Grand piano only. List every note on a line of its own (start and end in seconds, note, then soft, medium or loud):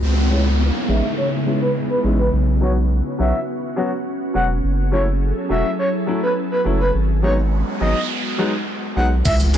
0.30 0.42 G#3 medium
0.30 0.42 B3 medium
0.30 0.43 C#4 medium
0.30 0.43 E4 medium
0.88 1.00 G#3 medium
0.88 1.00 B3 medium
0.88 1.00 C#4 medium
0.88 1.01 D#4 medium
1.46 1.58 G#3 medium
1.46 1.58 B3 medium
1.46 1.58 C#4 medium
1.46 1.58 E4 medium
2.03 2.15 G#3 medium
2.03 2.16 B3 medium
2.03 2.16 C#4 medium
2.03 2.16 E4 medium
2.61 2.73 F#3 medium
2.61 2.73 B3 medium
2.61 2.74 C#4 medium
2.61 2.74 F#4 medium
3.18 3.31 F#3 medium
3.18 3.31 B3 medium
3.18 3.31 C#4 medium
3.18 3.31 F#4 medium
3.76 3.88 F#3 medium
3.76 3.89 B3 medium
3.76 3.89 C#4 medium
3.76 3.89 F#4 medium
4.34 4.46 F#3 medium
4.34 4.46 B3 medium
4.34 4.46 C#4 medium
4.34 4.47 F#4 medium
4.92 5.04 F#3 medium
4.92 5.04 A3 medium
4.92 5.04 C#4 medium
4.92 5.04 E4 medium
5.49 5.61 F#3 medium
5.49 5.62 A3 medium
5.49 5.62 C#4 medium
5.49 5.62 F#4 medium
6.07 6.19 F#3 medium
6.07 6.19 A3 medium
6.07 6.19 C#4 medium
6.07 6.20 E4 medium
6.64 6.77 F#3 medium
6.64 6.77 A3 medium
6.64 6.77 C#4 medium
6.64 6.77 E4 medium
7.22 7.34 F#3 medium
7.22 7.35 G#3 medium
7.22 7.35 B3 medium
7.22 7.35 D#4 medium
7.80 7.92 F#3 medium
7.80 7.92 G#3 medium
7.80 7.93 B3 medium
7.80 7.93 D#4 medium
8.38 8.50 F#3 medium
8.38 8.50 G#3 medium
8.38 8.51 B3 medium
8.38 8.51 D#4 medium
8.96 9.08 F#3 medium
8.96 9.08 G#3 medium
8.96 9.08 B3 medium
8.96 9.08 D#4 medium
9.53 9.58 G#3 medium
9.53 9.58 B3 medium
9.53 9.58 C#4 medium
9.53 9.58 E4 medium